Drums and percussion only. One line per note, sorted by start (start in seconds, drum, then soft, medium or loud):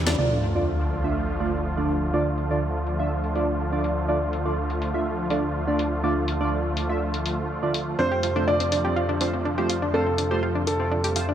0.06 snare loud
0.06 snare medium
0.06 closed hi-hat medium
0.43 open hi-hat medium
0.80 open hi-hat medium
0.91 open hi-hat loud
1.40 open hi-hat medium
1.89 open hi-hat medium
2.38 open hi-hat loud
2.87 open hi-hat loud
3.24 open hi-hat medium
3.35 open hi-hat loud
3.84 open hi-hat loud
4.33 open hi-hat medium
4.70 open hi-hat medium
4.82 open hi-hat loud
5.30 open hi-hat loud
5.79 open hi-hat loud
6.28 open hi-hat loud
6.77 open hi-hat loud
7.14 open hi-hat medium
7.26 open hi-hat loud
7.74 open hi-hat loud
8.23 open hi-hat loud
8.60 open hi-hat medium
8.72 open hi-hat loud
9.21 open hi-hat medium
9.70 open hi-hat loud
10.18 open hi-hat medium
10.67 open hi-hat medium
11.04 open hi-hat medium
11.16 open hi-hat medium